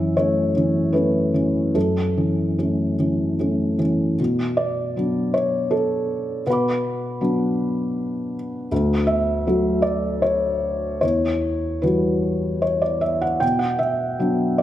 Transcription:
Already playing: F#2 E3 C#4 E5
0.17 A3 C#4 C#5
0.57 E3 C#4
0.93 A3 C#4 B4
1.34 E3 C#4
1.75 F#2 A4
2.17 E3 C#4
2.59 A3 C#4
3.00 E3 C#4
3.40 A3 C#4
3.78 E3 C#4
4.20 B2
4.57 D5
4.96 F#3 B3 D4
5.34 C#5
5.71 A4
6.46 B2 B4 F#5
6.50 B5 D6
7.21 F#3 B3 D4
8.72 D2
9.07 E5
9.47 F#3 A3 F#4
9.82 D5
10.22 C#5
11.01 E2 C#5
11.82 E3 G3 F#4 B4
12.62 C#5
12.82 D5
13.01 E5
13.22 F#5
13.40 B2 G5
13.59 F#5
13.79 E5
14.19 F#3 B3 D4
14.58 D5

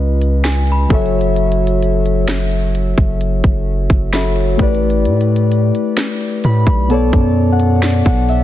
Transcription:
Already playing: C#2 C#3 C#4 F4 B4 D#5
0.22 closed hi-hat
0.44 G#5, snare, closed hi-hat
0.67 closed hi-hat
0.72 B5
0.89 F#1 F#3 F#4 A4, kick, closed hi-hat
0.93 C#5 E5
1.06 closed hi-hat
1.21 closed hi-hat
1.36 closed hi-hat
1.52 closed hi-hat
1.67 closed hi-hat
1.83 closed hi-hat
2.06 closed hi-hat
2.28 snare, closed hi-hat
2.51 closed hi-hat
2.75 closed hi-hat
2.98 F#1, kick, closed hi-hat
3.21 closed hi-hat
3.44 F#1, kick, closed hi-hat
3.90 F#1, kick, closed hi-hat
4.12 F#3 F#4 A4 C#5 E5 B5, snare, closed hi-hat
4.36 closed hi-hat
4.57 A1 A3 E4 G4, kick, closed hi-hat
4.62 B4 D5
4.75 closed hi-hat
4.90 closed hi-hat
5.05 A2, closed hi-hat
5.21 closed hi-hat
5.36 closed hi-hat
5.52 closed hi-hat
5.75 closed hi-hat
5.97 snare, closed hi-hat
6.21 closed hi-hat
6.44 A2 B5, closed hi-hat
6.67 B1, kick, closed hi-hat
6.88 B2 B3 A4 A5, closed hi-hat
6.92 C#5 D5
7.13 F#2, kick, closed hi-hat
7.52 F#5
7.60 closed hi-hat
7.82 D5, snare, closed hi-hat
8.05 B1 F#5, kick, closed hi-hat
8.29 E5, open hi-hat

